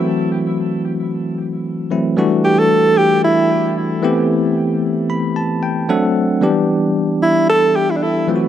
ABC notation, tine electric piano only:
X:1
M:4/4
L:1/8
Q:"Swing 16ths" 1/4=113
K:G
V:1 name="Tine electric piano"
z8 | z8 | z3 b a g f2 | z8 |]
V:2 name="Tine electric piano"
[E,F,A,CF]6- [E,F,A,CF] [E,F,A,CE] | [E,G,A,DF]6- [E,G,A,DF] [E,A,B,CG]- | [E,A,B,CG]6 [F,A,CDA]2 | [E,G,B,DG]6- [E,G,B,DG] [E,F,A,C=F^F] |]